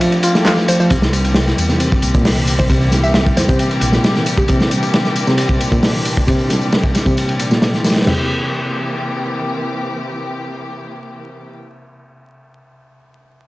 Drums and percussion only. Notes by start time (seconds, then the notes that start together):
0.01 ride, tambourine
0.12 ride, tambourine
0.23 ride, tambourine
0.35 snare, tambourine
0.45 snare, clap, ride, tambourine
0.57 snare, tambourine
0.68 ride, tambourine
0.80 tambourine
0.90 kick, ride, tambourine
1.02 snare, tambourine
1.13 ride, tambourine
1.24 ride, tambourine
1.34 snare, ride, tambourine
1.47 snare, tambourine
1.58 ride, tambourine
1.69 snare, tambourine
1.80 ride, tambourine
1.92 kick, tambourine
2.02 ride, tambourine
2.14 kick, tambourine
2.25 snare, open hi-hat, tambourine
2.37 tambourine
2.47 ride, tambourine
2.59 kick, tambourine
2.70 kick, ride, tambourine
2.81 tambourine
2.92 snare, ride, tambourine
3.04 tambourine
3.14 snare, ride, tambourine
3.26 kick, tambourine
3.37 snare, ride, tambourine
3.49 kick, tambourine
3.59 ride, tambourine
3.71 ride, tambourine
3.81 ride, tambourine
3.93 snare, tambourine
4.04 snare, ride, tambourine
4.15 snare, tambourine
4.26 ride, tambourine
4.37 kick
4.48 kick, ride, tambourine
4.60 snare, tambourine
4.71 ride, tambourine
4.82 ride, tambourine
4.93 snare, ride, tambourine
5.05 snare, tambourine
5.16 ride, tambourine
5.27 snare, tambourine
5.38 ride, tambourine
5.49 kick
5.61 ride, tambourine
5.72 kick, tambourine
5.83 snare, open hi-hat, tambourine
5.94 tambourine
6.05 ride, tambourine
6.17 kick, tambourine
6.28 kick, ride, tambourine
6.39 tambourine
6.50 snare, ride, tambourine
6.61 tambourine
6.72 snare, ride, tambourine
6.84 kick, tambourine
6.95 snare, ride, tambourine
7.06 kick, tambourine
7.17 ride, tambourine
7.29 ride, tambourine
7.39 ride, tambourine
7.51 snare, tambourine
7.62 snare, ride, tambourine
7.74 snare, tambourine
7.84 snare, ride, tambourine
7.90 snare, ride
7.96 snare, ride, tambourine
8.02 snare, ride
8.07 snare, floor tom, crash